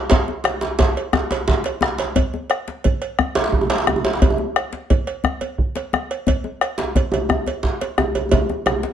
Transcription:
0.10 bombo rim, bombo low, cowbell, djembe slap, djembe bass
0.28 djembe tone
0.44 bombo rim, cowbell, djembe slap
0.61 djembe slap
0.79 bombo low, cowbell, djembe slap, djembe tone
0.97 cowbell
1.13 bombo rim, djembe slap, djembe bass
1.30 bombo rim, cowbell, djembe slap, djembe tone
1.48 bombo low, djembe slap
1.64 bombo rim, cowbell, djembe slap
1.81 bombo rim, djembe slap, djembe tone
1.98 cowbell, djembe slap
2.16 bombo rim, bombo low, cowbell, djembe bass
2.34 djembe tone
2.50 bombo rim, cowbell
2.68 djembe slap
2.84 bombo low, cowbell, djembe slap, djembe tone
3.02 bombo rim, cowbell, djembe slap
3.19 bombo rim, djembe bass
3.35 cowbell, djembe slap, djembe tone
3.44 djembe slap
3.52 bombo low, djembe tone
3.61 djembe tone
3.70 bombo rim, cowbell, djembe slap
3.78 djembe slap
3.87 bombo rim, djembe tone
3.96 djembe tone
4.05 cowbell, djembe slap
4.13 djembe slap
4.22 bombo rim, bombo low, cowbell, djembe tone, djembe bass
4.30 djembe tone
4.38 djembe tone
4.56 bombo rim, cowbell
4.73 djembe slap
4.90 bombo low, cowbell, djembe slap, djembe tone
5.07 bombo rim, cowbell, djembe slap
5.24 bombo rim, djembe bass
5.41 cowbell, djembe tone
5.58 bombo low
5.75 bombo rim, cowbell, djembe slap
5.93 bombo rim, djembe tone
6.11 bombo rim, cowbell
6.27 bombo rim, bombo low, cowbell, djembe bass
6.44 djembe tone
6.61 bombo rim, cowbell
6.78 djembe slap
6.95 bombo low, cowbell, djembe slap, djembe tone
7.12 bombo rim, cowbell, djembe slap, djembe tone
7.29 bombo rim, djembe tone, djembe bass
7.46 cowbell, djembe tone
7.63 bombo low, djembe slap
7.81 bombo rim, cowbell, djembe slap
7.98 bombo rim, djembe tone
8.15 bombo rim, cowbell, djembe tone
8.31 bombo rim, bombo low, cowbell, djembe slap, djembe tone, djembe bass
8.49 bombo rim, djembe tone
8.66 bombo rim, cowbell, djembe slap, djembe tone
8.83 bombo rim, djembe slap

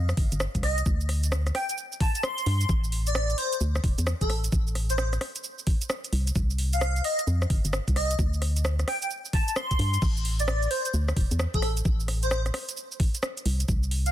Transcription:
Already playing: F2
0.09 cross-stick, shaker
0.17 G1, kick, open hi-hat
0.32 G1, closed hi-hat, shaker
0.40 cross-stick, shaker
0.55 C2, kick, closed hi-hat, shaker
0.63 D#5, cross-stick, open hi-hat
0.78 closed hi-hat, shaker
0.86 D2, kick, shaker
1.01 shaker
1.09 cross-stick, open hi-hat
1.24 closed hi-hat, shaker
1.32 cross-stick, shaker
1.47 cross-stick, closed hi-hat, shaker
1.55 G5, cross-stick, open hi-hat
1.69 G5, closed hi-hat, shaker
1.78 shaker
1.92 shaker
2.00 A5, kick, open hi-hat
2.15 A5, closed hi-hat, shaker
2.23 C6, cross-stick, shaker
2.38 closed hi-hat, shaker
2.46 G2, open hi-hat
2.61 closed hi-hat, shaker
2.69 A1, kick, shaker
2.84 shaker
2.92 open hi-hat
3.07 D5, closed hi-hat, shaker
3.15 cross-stick, shaker
3.30 closed hi-hat, shaker
3.38 C5, open hi-hat
3.53 closed hi-hat, shaker
3.61 D2, shaker
3.76 cross-stick, shaker
3.84 E1, kick, open hi-hat
3.98 E2, closed hi-hat, shaker
4.07 cross-stick, shaker
4.21 A1 A4, kick, closed hi-hat, shaker
4.30 cross-stick, open hi-hat
4.44 closed hi-hat, shaker
4.52 A1, kick, shaker
4.67 shaker
4.75 cross-stick, open hi-hat
4.90 C5, closed hi-hat, shaker
4.98 C5, cross-stick, shaker
5.13 cross-stick, closed hi-hat, shaker
5.21 cross-stick, open hi-hat
5.36 closed hi-hat, shaker
5.44 shaker
5.59 shaker
5.67 kick, open hi-hat
5.82 closed hi-hat, shaker
5.90 cross-stick, shaker
6.04 closed hi-hat, shaker
6.13 C2, open hi-hat
6.27 closed hi-hat, shaker
6.36 C2, kick, shaker
6.50 shaker
6.58 open hi-hat
6.73 F5, closed hi-hat, shaker
6.81 cross-stick, shaker
6.96 closed hi-hat, shaker
7.04 D#5, open hi-hat
7.19 closed hi-hat, shaker
7.27 F2, shaker
7.42 cross-stick, shaker
7.50 G1, kick, open hi-hat
7.65 G1, closed hi-hat, shaker
7.73 cross-stick, shaker
7.88 C2, kick, closed hi-hat, shaker
7.96 D#5, cross-stick, open hi-hat
8.11 closed hi-hat, shaker
8.19 D2, kick, shaker
8.34 shaker
8.42 cross-stick, open hi-hat
8.57 closed hi-hat, shaker
8.65 cross-stick, shaker
8.79 cross-stick, closed hi-hat, shaker
8.88 G5, cross-stick, open hi-hat
9.02 G5, closed hi-hat, shaker
9.10 shaker
9.25 shaker
9.33 A5, kick, open hi-hat
9.48 A5, closed hi-hat, shaker
9.56 C6, cross-stick, shaker
9.71 kick, closed hi-hat, shaker
9.79 G2, open hi-hat
9.94 closed hi-hat, shaker
10.02 A1, kick, crash, shaker
10.17 shaker
10.25 open hi-hat
10.40 D5, closed hi-hat, shaker
10.48 cross-stick, shaker
10.63 closed hi-hat, shaker
10.71 C5, open hi-hat
10.85 closed hi-hat, shaker
10.94 D2, shaker
11.08 cross-stick, shaker
11.16 E1, kick, open hi-hat
11.31 E2, closed hi-hat, shaker
11.39 cross-stick, shaker
11.54 A1 A4, kick, closed hi-hat, shaker
11.62 cross-stick, open hi-hat
11.77 closed hi-hat, shaker
11.85 A1, kick, shaker
12.00 shaker
12.08 cross-stick, open hi-hat
12.23 C5, closed hi-hat, shaker
12.31 C5, cross-stick, shaker
12.46 cross-stick, closed hi-hat, shaker
12.54 cross-stick, open hi-hat
12.69 closed hi-hat, shaker
12.77 shaker
12.92 shaker
13.00 kick, open hi-hat
13.15 closed hi-hat, shaker
13.23 cross-stick, shaker
13.37 closed hi-hat, shaker
13.46 C2, open hi-hat
13.60 closed hi-hat, shaker
13.68 C2, kick, shaker
13.83 shaker
13.91 open hi-hat
14.06 F5, closed hi-hat, shaker

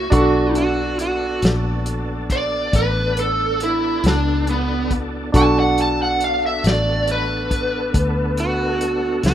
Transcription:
Already playing: F#4
0.10 B1 B3 D4 F#4 A4 D5 C#6, kick, closed hi-hat
0.55 F#4, closed hi-hat
0.99 F#4, closed hi-hat
1.42 A#1, snare, closed hi-hat
1.86 closed hi-hat
2.30 D5, kick, closed hi-hat
2.73 A1 B4, kick, snare, closed hi-hat
3.17 A4, closed hi-hat
3.60 E4, closed hi-hat
4.04 C#2 D4, snare, closed hi-hat
4.47 B3, closed hi-hat
4.91 kick, closed hi-hat
5.32 B1 B3 D4 F#4 A4 C#6, kick, closed hi-hat
5.37 A5
5.60 F#5
5.78 A5, closed hi-hat
6.03 F#5
6.21 F5, closed hi-hat
6.46 E5
6.64 A1 D5, snare, closed hi-hat
7.08 B4, closed hi-hat
7.51 kick, closed hi-hat
7.94 D2, kick, closed hi-hat
8.37 F#4, closed hi-hat
8.81 closed hi-hat
9.23 C#2 F#4, snare, closed hi-hat

